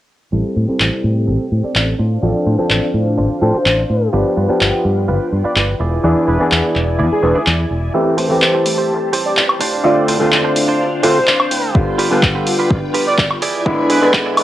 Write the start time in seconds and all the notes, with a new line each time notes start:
0.32 A1 G3 C4 E4 G4 A4 G5
0.56 A2 C4 G4 A4
0.68 G3 C4 E4 A4, muted fingered electric bass stroke
0.80 A1, clap
0.92 muted clean electric guitar stroke
1.03 A2, muted clean electric guitar stroke
1.27 A1 C4 G4 A4
1.52 A2
1.63 C4 G4 A4 D5, muted fingered electric bass stroke
1.75 A1 D5, clap
1.99 A2 D4 F4 C5 F5
2.23 A1 F3 C4 D4 A4 D5
2.35 muted fingered electric bass stroke
2.46 A2 D4 F4 C5
2.58 F3 C4 D4 A4, muted fingered electric bass stroke
2.70 A1, clap
2.82 muted clean electric guitar stroke
2.94 A2, muted clean electric guitar stroke
3.18 A1 D4 F4 C5
3.30 muted fingered electric bass stroke
3.41 A2 F3 C4 D4 A4 C5
3.54 D4 F4 C5, muted fingered electric bass stroke
3.66 A1, clap
3.90 A2
4.13 G1 F3 B3 D4 F4 G4 B4 G5
4.37 G2 F4 G4 B4
4.48 F3 B3 D4 G4, muted fingered electric bass stroke
4.61 G1, clap
4.73 muted clean electric guitar stroke
4.84 G2, muted clean electric guitar stroke
5.08 G1 F4 G4 B4
5.32 G2
5.44 F4 G4 B4 D5, muted fingered electric bass stroke
5.56 G1 D5, clap
5.80 E1 E4 G#4 D5 G#5
6.03 E2 E3 B3 D4 G#4
6.16 muted fingered electric bass stroke
6.27 E1 E4 G#4 B4 D5
6.39 E3 B3 D4 G#4
6.51 E2, clap
6.64 muted clean electric guitar stroke
6.75 E1, muted clean electric guitar stroke, clap
6.98 E2 E4 G#4 D5
7.11 G#4, muted fingered electric bass stroke
7.22 E1 E3 B3 D4 G#4
7.35 E4 G#4 D5
7.47 E2, clap
7.71 E1
7.94 A1 E3 A3 C4 G4 C5 A5
8.18 A2 G4 A4 C5, open hi-hat
8.29 E3 A3 C4 G4
8.42 A1, clap
8.54 G4 A4 C5
8.66 A2, open hi-hat
8.78 G4 A4 C5
8.90 A1
9.13 A2 G4 A4 C5, open hi-hat
9.26 D5
9.37 A1 D5, clap
9.50 high woodblock
9.61 A2 D4 F4 C5 F5, open hi-hat
9.84 A1 D3 A3 C4 F4 D5
10.08 A2 D4 F4 C5, open hi-hat
10.20 D3 A3 C4 F4
10.32 A1, clap
10.44 D4 F4 C5
10.56 A2, open hi-hat
10.68 D4 F4 C5
10.80 A1
10.92 muted fingered electric bass stroke
11.03 A2 D3 A3 C4 D4 F4 C5, open hi-hat
11.27 A1 D5, clap
11.40 high woodblock
11.51 A2 G5, open hi-hat
11.63 muted clean electric guitar stroke
11.75 D3 G3 B3 F4 B4 G5, kick
11.98 G2 F4 G4 B4, open hi-hat
12.11 D3 G3 B3 F4
12.23 kick, clap
12.35 F4 G4 B4
12.47 G2, open hi-hat
12.59 F4 G4 B4
12.70 G1, kick
12.94 G2 F4 G4 B4, open hi-hat
13.07 D5
13.18 G1 D5, kick, clap
13.30 high woodblock
13.42 E1 E4 G#4 D5 G#5, open hi-hat
13.65 E2 D3 G#3 B3 E4, kick
13.89 E4 G#4 B4 D5, open hi-hat
14.01 D3 G#3 B3 E4
14.13 E2, kick, clap
14.26 E4 G#4 D5
14.37 open hi-hat, high woodblock